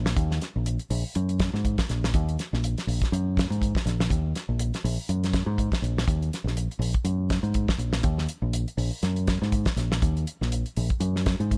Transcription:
0.00 0.13 A#1 medium
0.06 snare medium
0.17 0.38 D#2 loud
0.17 kick loud
0.17 closed hi-hat medium
0.31 snare soft
0.42 snare soft
0.42 closed hi-hat medium
0.56 0.77 A#1 medium
0.66 closed hi-hat medium
0.79 closed hi-hat soft
0.90 1.02 A#1 loud
0.90 open hi-hat medium
1.15 1.49 F#2 loud
1.15 closed hi-hat medium
1.29 closed hi-hat soft
1.39 kick medium
1.39 snare medium
1.39 closed hi-hat medium
1.54 1.75 G#2 loud
1.54 snare soft
1.65 kick medium
1.65 closed hi-hat medium
1.78 kick medium
1.78 snare medium
1.78 closed hi-hat soft
1.89 2.11 A#1 loud
1.89 snare soft
1.89 closed hi-hat medium
2.04 snare medium
2.14 2.36 D#2 loud
2.14 kick medium
2.14 closed hi-hat medium
2.29 closed hi-hat soft
2.39 snare soft
2.39 closed hi-hat medium
2.53 2.74 A#1 medium
2.53 snare soft
2.64 closed hi-hat medium
2.78 snare soft
2.78 closed hi-hat soft
2.87 2.99 A#1 loud
2.87 open hi-hat medium
3.02 kick medium
3.02 snare soft
3.02 closed hi-hat soft
3.12 3.46 F#2 loud
3.12 closed hi-hat medium
3.37 kick medium
3.37 snare medium
3.37 closed hi-hat medium
3.50 3.72 G#2 medium
3.50 closed hi-hat soft
3.62 kick medium
3.62 closed hi-hat medium
3.75 kick medium
3.75 snare medium
3.86 4.08 A#1 medium
3.86 snare soft
3.86 closed hi-hat medium
4.00 snare medium
4.10 4.32 D#2 loud
4.10 kick medium
4.10 closed hi-hat medium
4.35 snare soft
4.35 closed hi-hat medium
4.49 4.71 A#1 medium
4.59 closed hi-hat medium
4.74 snare soft
4.74 closed hi-hat soft
4.84 4.96 A#1 loud
4.84 open hi-hat medium
5.09 5.43 F#2 medium
5.09 closed hi-hat medium
5.24 snare soft
5.24 closed hi-hat soft
5.33 kick medium
5.33 snare medium
5.33 closed hi-hat medium
5.46 5.69 G#2 loud
5.58 kick medium
5.58 closed hi-hat medium
5.72 kick medium
5.72 snare medium
5.72 closed hi-hat soft
5.82 6.04 A#1 medium
5.82 closed hi-hat medium
5.98 snare medium
6.08 6.29 D#2 loud
6.08 kick medium
6.08 closed hi-hat medium
6.22 closed hi-hat soft
6.33 snare soft
6.33 closed hi-hat medium
6.44 6.67 A#1 medium
6.44 snare soft
6.57 closed hi-hat medium
6.71 closed hi-hat soft
6.79 6.92 A#1 loud
6.79 open hi-hat medium
6.94 kick medium
6.94 closed hi-hat soft
7.04 7.39 F#2 loud
7.04 closed hi-hat medium
7.30 kick medium
7.30 snare medium
7.30 closed hi-hat medium
7.43 7.65 G#2 loud
7.43 closed hi-hat soft
7.54 kick medium
7.54 closed hi-hat medium
7.68 kick medium
7.68 snare medium
7.78 8.01 A#1 medium
7.78 closed hi-hat medium
7.93 snare medium
8.03 8.26 D#2 loud
8.03 kick loud
8.03 closed hi-hat medium
8.18 snare soft
8.29 closed hi-hat medium
8.42 8.64 A#1 medium
8.53 closed hi-hat medium
8.68 closed hi-hat soft
8.77 8.90 A#1 loud
8.77 open hi-hat medium
9.03 9.37 F#2 loud
9.03 snare soft
9.03 closed hi-hat medium
9.16 closed hi-hat soft
9.27 kick medium
9.27 snare medium
9.27 closed hi-hat medium
9.42 9.64 G#2 loud
9.42 snare soft
9.52 kick medium
9.52 closed hi-hat medium
9.65 kick medium
9.65 snare medium
9.65 closed hi-hat soft
9.76 9.99 A#1 medium
9.76 snare soft
9.76 closed hi-hat medium
9.92 snare medium
10.02 10.24 D#2 loud
10.02 kick medium
10.02 closed hi-hat medium
10.17 closed hi-hat soft
10.27 closed hi-hat medium
10.41 10.63 A#1 medium
10.41 snare soft
10.52 closed hi-hat medium
10.66 closed hi-hat soft
10.76 10.89 A#1 loud
10.76 open hi-hat medium
10.90 kick medium
10.90 closed hi-hat soft
11.00 11.35 F#2 loud
11.00 closed hi-hat medium
11.16 snare soft
11.26 kick medium
11.26 snare medium
11.26 closed hi-hat soft
11.40 11.58 G#2 loud
11.40 closed hi-hat soft
11.51 kick medium
11.51 closed hi-hat medium

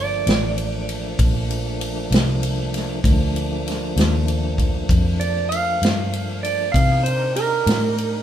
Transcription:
0.00 0.24 G1 medium
0.00 3.00 F3 medium
0.00 3.00 A3 medium
0.00 3.00 A#3 medium
0.00 3.00 D4 medium
0.00 1.16 D5 medium
0.27 1.16 A1 medium
0.27 snare loud
0.27 ride medium
0.58 ride medium
0.89 ride medium
1.19 2.09 A#1 medium
1.19 kick loud
1.19 ride medium
1.50 ride medium
1.81 ride medium
2.11 3.01 C2 medium
2.11 snare loud
2.11 ride medium
2.43 ride medium
2.74 snare soft
2.74 ride medium
3.04 3.94 D2 medium
3.04 6.70 F3 medium
3.04 6.70 A3 medium
3.04 6.70 A#3 medium
3.04 6.70 D4 medium
3.04 kick loud
3.04 ride medium
3.36 ride medium
3.68 snare soft
3.68 ride medium
3.96 4.86 D#2 medium
3.96 snare loud
3.96 ride medium
4.28 ride soft
4.58 kick medium
4.58 ride soft
4.89 5.79 F2 medium
4.89 kick loud
4.89 ride medium
5.20 5.50 D5 medium
5.20 ride soft
5.49 6.39 F5 medium
5.49 ride medium
5.82 6.71 G2 medium
5.82 snare loud
5.82 ride medium
6.13 ride medium
6.43 6.73 D5 medium
6.43 ride medium
6.72 7.64 C3 medium
6.72 7.05 E3 medium
6.72 7.05 B3 medium
6.72 7.05 D#4 medium
6.72 7.05 G#4 medium
6.72 7.03 F5 medium
6.72 kick loud
6.72 ride medium
7.04 8.23 D4 medium
7.04 8.23 D#4 medium
7.04 8.23 G4 medium
7.04 8.23 A#4 medium
7.04 7.34 C5 medium
7.04 ride medium
7.36 8.23 A#4 medium
7.36 ride medium
7.67 8.23 A2 medium
7.67 snare loud
7.67 ride medium
7.98 ride medium

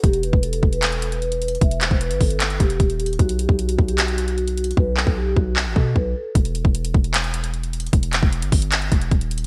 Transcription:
0.04 0.32 E1 loud
0.04 0.20 G4 loud
0.04 kick loud
0.04 closed hi-hat medium
0.13 closed hi-hat medium
0.23 0.40 B4 medium
0.23 closed hi-hat medium
0.33 0.62 E1 loud
0.33 kick loud
0.43 0.71 A4 medium
0.43 closed hi-hat medium
0.53 closed hi-hat medium
0.63 1.58 E1 loud
0.63 kick medium
0.72 0.81 B4 medium
0.72 closed hi-hat medium
0.82 1.10 A4 medium
0.82 clap loud
0.82 closed hi-hat medium
0.92 closed hi-hat soft
1.02 closed hi-hat medium
1.12 1.58 B4 medium
1.12 closed hi-hat medium
1.22 closed hi-hat medium
1.32 closed hi-hat medium
1.42 closed hi-hat medium
1.48 closed hi-hat medium
1.55 closed hi-hat soft
1.61 1.90 E1 loud
1.61 1.78 E5 medium
1.61 kick loud
1.61 closed hi-hat medium
1.71 closed hi-hat medium
1.81 1.98 C5 medium
1.81 clap medium
1.81 closed hi-hat medium
1.91 2.12 E1 loud
1.91 kick loud
2.01 2.17 B4 medium
2.01 closed hi-hat medium
2.11 2.20 G1 loud
2.11 closed hi-hat medium
2.20 2.59 G1 loud
2.20 2.57 A4 medium
2.20 kick medium
2.20 open hi-hat medium
2.30 closed hi-hat medium
2.40 clap loud
2.40 closed hi-hat medium
2.50 closed hi-hat soft
2.60 2.79 E1 loud
2.60 3.16 G4 medium
2.60 kick loud
2.60 closed hi-hat medium
2.70 closed hi-hat medium
2.80 3.18 D#1 loud
2.80 kick medium
2.80 closed hi-hat medium
2.90 closed hi-hat medium
3.00 closed hi-hat medium
3.06 closed hi-hat medium
3.13 closed hi-hat soft
3.19 3.48 B1 loud
3.19 3.36 F#4 loud
3.19 kick loud
3.19 closed hi-hat medium
3.29 closed hi-hat medium
3.39 3.56 G4 medium
3.39 closed hi-hat medium
3.49 3.77 B1 loud
3.49 kick loud
3.59 3.87 F#4 medium
3.59 closed hi-hat medium
3.69 closed hi-hat medium
3.79 4.73 B1 loud
3.79 kick medium
3.88 3.97 G4 medium
3.88 closed hi-hat medium
3.98 4.26 F#4 medium
3.98 clap loud
3.98 closed hi-hat medium
4.08 closed hi-hat soft
4.18 closed hi-hat medium
4.28 4.74 F#4 medium
4.28 closed hi-hat medium
4.38 closed hi-hat medium
4.48 closed hi-hat medium
4.57 closed hi-hat medium
4.64 closed hi-hat medium
4.71 closed hi-hat soft
4.77 5.06 B1 loud
4.77 4.94 B4 medium
4.77 kick loud
4.97 5.14 A4 medium
4.97 clap medium
5.07 5.35 B1 loud
5.07 kick loud
5.17 5.34 G4 loud
5.36 5.68 B1 loud
5.36 5.74 F#4 medium
5.36 kick medium
5.56 clap loud
5.66 5.75 A1 loud
5.76 5.95 B2 loud
5.76 5.93 A4 medium
5.76 kick loud
5.96 6.15 B1 loud
5.96 6.12 B4 medium
5.96 kick medium
6.16 6.32 A4 medium
6.35 6.64 E1 loud
6.35 kick loud
6.35 closed hi-hat medium
6.45 closed hi-hat medium
6.55 closed hi-hat medium
6.65 6.93 E1 loud
6.65 kick loud
6.75 closed hi-hat medium
6.85 closed hi-hat medium
6.94 7.89 E1 loud
6.94 kick medium
7.04 closed hi-hat medium
7.14 clap loud
7.14 closed hi-hat medium
7.24 closed hi-hat soft
7.34 closed hi-hat medium
7.44 closed hi-hat medium
7.54 closed hi-hat medium
7.63 closed hi-hat medium
7.73 closed hi-hat medium
7.80 closed hi-hat medium
7.86 closed hi-hat soft
7.93 8.21 E1 loud
7.93 kick loud
7.93 closed hi-hat medium
8.03 closed hi-hat medium
8.13 clap loud
8.13 closed hi-hat medium
8.23 8.44 E1 loud
8.23 kick loud
8.33 closed hi-hat medium
8.42 8.52 G1 loud
8.42 closed hi-hat medium
8.52 8.90 G1 loud
8.52 kick medium
8.52 open hi-hat medium
8.62 closed hi-hat medium
8.72 clap loud
8.72 closed hi-hat medium
8.82 closed hi-hat soft
8.92 9.11 E1 loud
8.92 kick loud
8.92 closed hi-hat medium
9.02 closed hi-hat medium
9.11 9.47 D#1 loud
9.11 kick medium
9.11 closed hi-hat medium
9.21 closed hi-hat medium
9.31 closed hi-hat medium
9.38 closed hi-hat medium

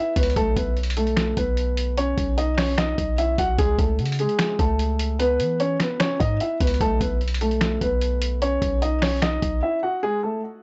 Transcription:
0.00 0.13 E4 medium
0.00 0.12 E5 medium
0.16 0.36 C#2 loud
0.16 0.33 B3 medium
0.16 0.32 B4 medium
0.16 kick loud
0.16 closed hi-hat medium
0.23 closed hi-hat medium
0.30 closed hi-hat medium
0.36 0.56 B1 loud
0.36 0.53 A3 medium
0.36 0.53 A4 loud
0.36 kick loud
0.36 closed hi-hat medium
0.56 1.34 B1 loud
0.56 0.73 B3 medium
0.56 0.72 B4 medium
0.56 kick loud
0.56 closed hi-hat medium
0.77 closed hi-hat soft
0.83 closed hi-hat medium
0.90 closed hi-hat medium
0.97 1.35 A3 medium
0.97 1.35 A4 medium
0.97 closed hi-hat medium
1.07 closed hi-hat soft
1.17 finger snap medium
1.17 snare loud
1.17 closed hi-hat medium
1.37 2.14 B1 loud
1.37 1.94 B3 medium
1.37 1.94 B4 medium
1.37 kick medium
1.37 closed hi-hat medium
1.57 closed hi-hat medium
1.77 closed hi-hat medium
1.97 2.36 C#4 medium
1.97 2.35 C#5 medium
1.97 closed hi-hat medium
2.18 2.95 B1 loud
2.18 kick loud
2.18 closed hi-hat medium
2.38 2.54 D#4 medium
2.38 2.54 D#5 medium
2.38 closed hi-hat medium
2.58 2.74 C#4 medium
2.58 2.74 C#5 medium
2.58 finger snap medium
2.58 snare medium
2.58 open hi-hat medium
2.78 3.16 D#4 medium
2.78 3.16 D#5 medium
2.78 finger snap medium
2.78 snare loud
2.78 closed hi-hat medium
2.98 3.37 B1 loud
2.98 kick medium
2.98 closed hi-hat medium
3.18 3.35 E4 medium
3.18 3.34 E5 medium
3.18 closed hi-hat medium
3.38 3.58 B1 loud
3.38 3.55 F#4 medium
3.38 3.55 F#5 medium
3.38 kick loud
3.38 closed hi-hat medium
3.58 3.78 C#2 loud
3.58 3.75 G#3 medium
3.58 3.75 G#4 loud
3.58 kick loud
3.58 closed hi-hat medium
3.79 4.00 C#2 loud
3.79 3.95 A3 medium
3.79 kick loud
3.79 closed hi-hat medium
3.99 4.27 C#3 loud
3.99 closed hi-hat soft
4.06 closed hi-hat medium
4.12 closed hi-hat medium
4.19 4.58 G#3 medium
4.19 4.57 G#4 medium
4.19 closed hi-hat medium
4.29 closed hi-hat soft
4.39 finger snap loud
4.39 snare loud
4.39 closed hi-hat medium
4.59 5.41 C#2 loud
4.59 5.16 A3 medium
4.59 5.16 A4 medium
4.59 kick medium
4.59 closed hi-hat medium
4.79 closed hi-hat medium
4.99 closed hi-hat loud
5.19 5.58 B3 medium
5.19 5.57 B4 loud
5.19 closed hi-hat medium
5.40 5.78 E3 loud
5.40 closed hi-hat medium
5.60 5.77 C#4 medium
5.60 5.76 C#5 medium
5.60 closed hi-hat medium
5.80 5.97 B3 medium
5.80 5.96 B4 medium
5.80 finger snap medium
5.80 snare medium
5.80 closed hi-hat medium
6.00 6.17 C#4 medium
6.00 6.16 C#5 loud
6.00 finger snap loud
6.00 snare loud
6.00 closed hi-hat medium
6.20 6.40 G#2 loud
6.20 6.37 D#4 medium
6.20 6.36 D#5 medium
6.20 kick medium
6.20 closed hi-hat medium
6.40 6.57 E4 medium
6.40 6.57 E5 medium
6.40 closed hi-hat medium
6.60 6.80 C#2 loud
6.60 6.77 B3 medium
6.60 6.77 B4 medium
6.60 kick loud
6.60 closed hi-hat medium
6.67 closed hi-hat medium
6.74 closed hi-hat soft
6.81 7.00 B1 loud
6.81 6.97 A3 medium
6.81 6.97 A4 loud
6.81 kick loud
6.81 closed hi-hat medium
7.00 7.78 B1 loud
7.00 7.17 B3 medium
7.00 7.17 B4 medium
7.00 kick loud
7.00 closed hi-hat medium
7.21 closed hi-hat soft
7.28 closed hi-hat medium
7.34 closed hi-hat medium
7.41 7.79 A3 medium
7.41 7.79 A4 medium
7.41 closed hi-hat medium
7.51 closed hi-hat soft
7.61 finger snap loud
7.61 snare loud
7.61 closed hi-hat medium
7.81 8.59 B1 loud
7.81 8.39 B3 medium
7.81 8.38 B4 medium
7.81 kick medium
7.81 closed hi-hat medium
8.01 closed hi-hat medium
8.22 closed hi-hat loud
8.42 8.80 C#4 medium
8.42 8.80 C#5 loud
8.42 closed hi-hat medium
8.62 9.39 B1 loud
8.62 kick loud
8.62 closed hi-hat medium
8.82 8.99 D#4 medium
8.82 8.98 D#5 medium
8.82 closed hi-hat medium
9.02 9.19 C#4 medium
9.02 9.18 C#5 medium
9.02 finger snap medium
9.02 snare loud
9.02 open hi-hat medium
9.22 9.61 D#4 medium
9.22 9.60 D#5 medium
9.22 finger snap medium
9.22 snare loud
9.22 closed hi-hat medium
9.42 9.62 B1 loud
9.42 kick medium
9.42 closed hi-hat medium
9.63 9.79 E4 medium
9.63 9.79 E5 medium
9.83 9.99 F#4 medium
9.83 9.99 F#5 medium
10.03 10.20 G#3 medium
10.03 10.19 G#4 loud
10.23 10.40 A3 medium
10.23 10.39 A4 medium

